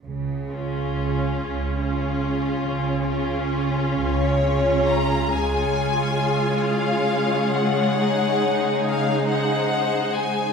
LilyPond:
<<
  \new Staff \with { instrumentName = "Violin section" } { \time 6/8 \key des \major \tempo 4. = 46 << { r2. | r4. des''4 bes''8 | aes''4. f''4 ges''8~ | ges''4 f''8 ges''4 aes''8 | } \\ { r8 aes'4. aes'4~ | aes'8 aes'4 r8 aes'4 | r2. | r2. | } >> }
  \new Staff \with { instrumentName = "Violin section" } { \time 6/8 \key des \major << { r8 f'4. f'4~ | f'8 f'4. f'4 | des''2.~ | des''4. c''4. | } \\ { r2. | r2. | aes'2.~ | aes'2. | } >> }
  \new Staff \with { instrumentName = "Viola section" } { \time 6/8 \key des \major << { r2. | r2. | f'2. | ees'2. | } \\ { r8 des'4. des'4~ | des'8 des'4. des'4 | aes2.~ | aes2. | } >> }
  \new Staff \with { instrumentName = "Cello section" } { \clef bass \time 6/8 \key des \major des4. des4. | des4. des4. | des2.~ | des2. | }
  \new Staff \with { instrumentName = "Double bass section" } { \clef bass \time 6/8 \key des \major des,4. des,4. | des,4. des,4. | des,4 r2 | r2. | }
>>